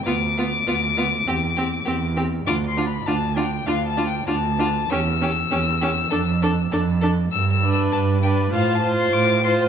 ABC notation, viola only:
X:1
M:4/4
L:1/8
Q:1/4=100
K:Ddor
V:1 name="Viola"
B, B, B, B, C C C C | D D D D D D D D | ^C C C C D D D D | z D2 D F F2 F |]